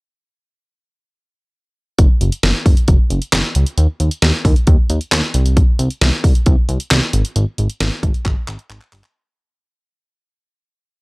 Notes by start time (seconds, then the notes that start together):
1.99 F#1, kick, closed hi-hat
2.21 F#1, closed hi-hat
2.32 closed hi-hat
2.43 F#1, snare, closed hi-hat
2.66 F#1, kick, open hi-hat
2.77 closed hi-hat
2.88 F#1, kick, closed hi-hat
3.10 F#1, closed hi-hat
3.22 closed hi-hat
3.33 F#1, snare, clap, closed hi-hat
3.55 C#2, closed hi-hat
3.66 closed hi-hat
3.78 D#2, closed hi-hat
4.00 D#2, closed hi-hat
4.11 closed hi-hat
4.22 D#2, snare, closed hi-hat
4.45 D#2, kick, open hi-hat
4.56 closed hi-hat
4.67 D#2, kick, closed hi-hat
4.90 D#2, closed hi-hat
5.01 closed hi-hat
5.12 D#2, snare, clap, closed hi-hat
5.34 C2, closed hi-hat
5.46 closed hi-hat
5.57 kick, closed hi-hat
5.79 C2, closed hi-hat
5.90 closed hi-hat
6.01 C2, snare, closed hi-hat
6.24 C2, kick, open hi-hat
6.35 closed hi-hat
6.46 C2, kick, closed hi-hat
6.69 C2, closed hi-hat
6.80 closed hi-hat
6.91 C2, snare, clap, closed hi-hat
7.13 G#1, closed hi-hat
7.25 closed hi-hat
7.36 G#1, closed hi-hat
7.58 G#1, closed hi-hat
7.70 closed hi-hat
7.80 G#1, snare, closed hi-hat
8.03 G#1, kick, closed hi-hat
8.14 closed hi-hat
8.25 G#1, kick, clap, closed hi-hat
8.48 G#1, clap, closed hi-hat
8.59 closed hi-hat
8.70 G#1, clap, closed hi-hat
8.81 clap
8.92 G1, clap, open hi-hat
9.04 clap